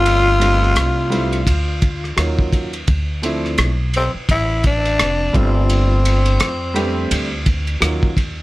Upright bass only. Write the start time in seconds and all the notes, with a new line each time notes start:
Already playing: G1
0.76 C2
1.47 D2
2.18 D#2
2.88 D2
3.58 B1
4.15 muted upright bass stroke
4.29 A1
4.99 F1
5.34 G1
6.41 F2
7.11 D2
7.82 D#2